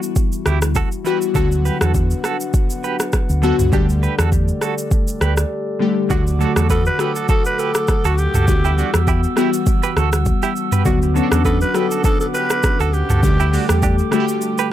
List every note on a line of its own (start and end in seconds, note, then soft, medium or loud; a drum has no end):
0.00 1.04 E3 medium
0.00 1.05 G3 medium
0.00 1.33 G3 medium
0.00 1.06 B3 medium
0.00 1.33 E4 medium
0.00 1.07 F#4 loud
0.00 1.33 F#4 medium
0.00 shaker medium
0.16 kick loud
0.16 shaker medium
0.32 shaker medium
0.46 0.79 D2 medium
0.46 0.59 E4 medium
0.46 0.58 G4 medium
0.46 cross-stick loud
0.46 shaker medium
0.62 cross-stick loud
0.62 shaker loud
0.75 0.88 F#4 medium
0.75 0.88 A4 medium
0.75 kick medium
0.75 shaker medium
0.92 shaker medium
1.04 1.27 E3 medium
1.04 1.27 G3 medium
1.04 1.27 B3 medium
1.04 1.28 F#4 loud
1.04 1.18 G4 medium
1.04 1.18 B4 medium
1.04 shaker medium
1.22 shaker medium
1.34 1.68 D2 loud
1.34 2.18 D3 medium
1.34 2.19 F#3 medium
1.34 2.19 B3 medium
1.34 3.70 D4 medium
1.34 2.20 F#4 loud
1.34 1.48 F#4 medium
1.34 1.47 A4 medium
1.34 3.70 B4 medium
1.34 3.70 F#5 medium
1.34 kick loud
1.34 shaker medium
1.52 shaker medium
1.65 1.78 G4 medium
1.65 1.77 B4 medium
1.65 shaker medium
1.81 2.12 E2 medium
1.81 1.92 F#4 medium
1.81 1.91 A4 medium
1.81 cross-stick loud
1.81 shaker medium
1.94 kick medium
1.94 shaker medium
2.11 shaker soft
2.24 2.37 F#4 medium
2.24 2.37 A4 medium
2.24 cross-stick medium
2.24 shaker medium
2.40 shaker medium
2.54 kick loud
2.54 shaker medium
2.70 shaker medium
2.84 2.96 G4 medium
2.84 2.96 B4 medium
2.84 shaker medium
3.00 cross-stick loud
3.00 shaker loud
3.12 kick medium
3.12 cross-stick loud
3.12 shaker medium
3.29 3.51 D2 medium
3.29 shaker medium
3.42 3.64 D3 medium
3.42 3.65 F#3 medium
3.42 3.65 B3 medium
3.42 3.56 F#4 medium
3.42 3.65 F#4 loud
3.42 3.55 A4 medium
3.42 shaker soft
3.59 3.69 C#2 loud
3.59 mid tom medium
3.59 shaker medium
3.72 4.06 D2 loud
3.72 4.56 D3 medium
3.72 4.56 G3 medium
3.72 4.57 A3 medium
3.72 3.85 D4 medium
3.72 6.08 G4 medium
3.72 3.85 G4 medium
3.72 4.57 G4 loud
3.72 6.08 A4 medium
3.72 6.08 D5 medium
3.72 kick loud
3.72 shaker medium
3.89 shaker soft
4.03 4.15 G4 medium
4.03 4.15 B4 loud
4.03 shaker medium
4.19 4.50 E2 medium
4.19 4.29 F#4 medium
4.19 4.29 A4 medium
4.19 cross-stick loud
4.19 shaker medium
4.32 kick medium
4.32 shaker medium
4.48 shaker soft
4.61 4.74 F#4 medium
4.61 4.74 A4 medium
4.61 cross-stick medium
4.61 shaker medium
4.78 shaker medium
4.91 kick loud
4.91 shaker medium
5.08 shaker medium
5.21 5.43 D2 medium
5.21 5.34 G4 medium
5.21 5.33 B4 medium
5.21 cross-stick loud
5.21 shaker medium
5.37 cross-stick medium
5.37 shaker loud
5.79 6.02 D3 medium
5.79 6.02 G3 medium
5.79 6.02 A3 medium
5.79 6.03 G4 loud
6.09 6.44 D2 loud
6.09 6.31 D3 medium
6.09 6.32 F#3 medium
6.09 6.32 A3 medium
6.09 6.23 D4 medium
6.09 6.23 F#4 medium
6.09 6.33 F#4 loud
6.09 8.45 A4 medium
6.09 10.81 F#5 medium
6.09 8.45 D6 medium
6.09 kick loud
6.09 shaker medium
6.27 shaker medium
6.39 6.82 D3 medium
6.39 6.83 F#3 medium
6.39 6.83 A3 medium
6.39 6.84 F#4 loud
6.39 6.53 F#4 medium
6.39 6.52 A4 medium
6.39 shaker medium
6.56 6.87 E2 medium
6.56 6.67 F#4 medium
6.56 6.66 A4 medium
6.56 cross-stick loud
6.56 shaker medium
6.70 6.82 F#4 medium
6.70 6.85 A4 loud
6.70 6.82 B4 medium
6.70 kick medium
6.70 shaker medium
6.86 6.99 B4 loud
6.86 shaker soft
6.98 7.83 D3 medium
6.98 7.83 F#3 medium
6.98 7.83 A3 medium
6.98 7.84 F#4 medium
6.98 7.12 G4 medium
6.98 7.27 A4 medium
6.98 7.12 B4 medium
6.98 cross-stick medium
6.98 shaker medium
7.16 7.26 F#4 medium
7.16 7.26 A4 medium
7.16 shaker medium
7.28 7.42 F#4 medium
7.28 7.41 A4 medium
7.28 7.45 A4 loud
7.28 kick loud
7.28 shaker medium
7.45 7.61 B4 loud
7.45 shaker medium
7.59 7.71 G4 medium
7.59 8.07 A4 loud
7.59 7.71 B4 medium
7.59 shaker medium
7.75 cross-stick loud
7.75 shaker loud
7.88 kick medium
7.88 cross-stick medium
7.88 shaker medium
8.05 8.26 D2 medium
8.05 8.20 F#4 medium
8.05 8.15 F#4 medium
8.05 8.15 A4 medium
8.05 shaker medium
8.18 9.08 G4 medium
8.18 shaker medium
8.34 8.44 C#2 loud
8.34 8.45 F#4 medium
8.34 8.45 A4 medium
8.34 mid tom loud
8.34 shaker medium
8.47 8.81 D2 loud
8.47 8.69 E3 medium
8.47 8.69 G3 medium
8.47 10.83 G3 medium
8.47 8.70 B3 medium
8.47 8.70 F#4 medium
8.47 10.83 E6 medium
8.47 kick loud
8.47 shaker medium
8.65 8.75 E4 medium
8.65 8.74 G4 medium
8.65 shaker soft
8.76 9.20 E3 medium
8.76 9.20 G3 medium
8.76 9.21 B3 medium
8.76 8.90 D4 medium
8.76 8.90 F#4 medium
8.76 9.21 F#4 medium
8.76 shaker medium
8.94 9.25 E2 medium
8.94 cross-stick loud
8.94 shaker medium
9.07 9.20 E4 medium
9.07 9.20 G4 medium
9.07 kick medium
9.07 shaker medium
9.24 shaker soft
9.36 10.20 E3 medium
9.36 10.21 G3 medium
9.36 10.21 B3 medium
9.36 9.50 E4 medium
9.36 10.22 F#4 loud
9.36 9.49 G4 medium
9.36 cross-stick medium
9.36 shaker medium
9.53 shaker loud
9.66 kick loud
9.66 shaker medium
9.83 9.94 G4 medium
9.83 9.93 B4 medium
9.83 shaker medium
9.96 10.30 D2 medium
9.96 10.09 F#4 medium
9.96 10.09 A4 medium
9.96 cross-stick loud
9.96 shaker medium
10.13 cross-stick loud
10.13 shaker loud
10.26 kick medium
10.26 shaker medium
10.43 10.53 E4 medium
10.43 10.52 G4 medium
10.43 shaker medium
10.56 shaker medium
10.72 10.83 G4 medium
10.72 10.82 B4 medium
10.72 mid tom loud
10.72 shaker medium
10.84 11.19 D2 loud
10.84 11.07 D3 medium
10.84 11.07 F#3 medium
10.84 11.08 B3 medium
10.84 10.98 D4 medium
10.84 10.98 F#4 loud
10.84 11.08 F#4 loud
10.84 13.21 B4 medium
10.84 13.21 F#5 medium
10.84 14.73 D6 medium
10.84 kick loud
10.84 shaker medium
11.02 shaker medium
11.14 11.58 D3 medium
11.14 11.58 F#3 medium
11.14 11.58 B3 medium
11.14 11.23 C#4 medium
11.14 11.28 F#4 medium
11.14 11.27 A4 medium
11.14 shaker medium
11.23 11.62 D4 loud
11.31 11.63 E2 medium
11.31 11.42 F#4 medium
11.31 11.42 A4 medium
11.31 cross-stick loud
11.31 shaker medium
11.45 11.58 F#4 medium
11.45 11.60 A4 loud
11.45 11.57 B4 medium
11.45 kick medium
11.45 shaker medium
11.61 11.76 B4 loud
11.61 shaker soft
11.74 12.58 D3 medium
11.74 12.58 F#3 medium
11.74 12.59 B3 medium
11.74 12.59 F#4 medium
11.74 11.87 G4 medium
11.74 12.04 A4 loud
11.74 11.87 B4 medium
11.74 cross-stick medium
11.74 shaker medium
11.91 12.02 F#4 medium
11.91 12.01 A4 medium
11.91 shaker loud
12.04 12.17 F#4 medium
12.04 12.20 A4 loud
12.04 12.17 A4 medium
12.04 kick loud
12.04 shaker medium
12.21 12.27 A4 medium
12.21 shaker medium
12.34 12.47 G4 medium
12.34 12.81 B4 loud
12.34 12.46 B4 medium
12.34 shaker medium
12.50 cross-stick loud
12.50 shaker loud
12.63 kick loud
12.63 cross-stick loud
12.63 shaker medium
12.80 13.01 D2 medium
12.80 12.91 F#4 medium
12.80 12.95 A4 loud
12.80 12.90 A4 medium
12.80 shaker medium
12.93 13.83 G4 medium
12.93 shaker medium
13.10 13.19 C#2 loud
13.10 13.20 F#4 medium
13.10 13.20 A4 medium
13.10 mid tom loud
13.10 shaker medium
13.22 13.56 D2 loud
13.22 13.44 D3 medium
13.22 13.45 G3 medium
13.22 13.45 A3 medium
13.22 13.46 G4 medium
13.22 14.73 A4 medium
13.22 14.73 G5 medium
13.22 kick loud
13.22 shaker medium
13.40 13.50 E4 medium
13.40 13.49 G4 medium
13.40 shaker medium
13.52 13.95 D3 medium
13.52 13.95 G3 medium
13.52 13.96 A3 medium
13.52 13.66 D4 medium
13.52 13.65 F#4 medium
13.52 13.96 G4 medium
13.52 open hi-hat medium
13.52 shaker medium
13.69 14.00 E2 medium
13.69 cross-stick loud
13.69 shaker medium
13.82 13.95 D4 medium
13.82 13.95 G4 medium
13.82 kick medium
13.82 shaker medium
13.99 shaker soft
14.11 14.73 D3 medium
14.11 14.73 G3 medium
14.11 14.73 A3 medium
14.11 14.25 E4 medium
14.11 14.20 F#4 medium
14.11 14.25 G4 medium
14.11 cross-stick medium
14.11 shaker medium
14.20 14.73 G4 loud
14.28 shaker loud
14.41 shaker medium
14.58 14.69 G4 medium
14.58 14.68 B4 medium
14.58 shaker medium